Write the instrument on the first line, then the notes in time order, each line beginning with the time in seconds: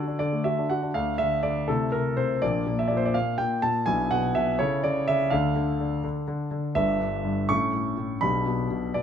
grand piano
Already playing: D3 D4 F#4 A4 D5
0.08 D4
0.19 D3 D5
0.33 A3
0.44 F#4 E5
0.59 D4
0.70 F#4 F#5
0.83 D4
0.94 D2 D3 A3 D4 F5
1.18 D3 E5
1.43 D3 D5
1.68 C3 A3 E4 A4
1.92 C3 A#4
2.17 C3 C5
2.42 A#1 A#2 A#3 D4 D5
2.67 A#2
2.79 E5
2.88 A#2 D5
2.97 C5
3.05 D5
3.14 A#2 F5
3.38 A#2 G5
3.62 A#2 A5
3.86 B1 B2 D4 E4 G#5
4.11 B2 F#5
4.35 B2 E5
4.59 C#3 E4 A4 C#5
4.84 C#3 D5
5.08 C#3 E5
5.30 D2 D3 D4 A4 F5
5.56 D3
5.80 D3
6.04 D3
6.28 D3
6.51 D3
6.75 G1 G2 D4 B4 E5
7.00 G2
7.24 G2
7.49 A2 C#4 A4 C#6
7.74 A2
7.97 A2
8.21 B1 B2 D4 G4 B5
8.46 B2
8.71 B2
8.94 B2 D5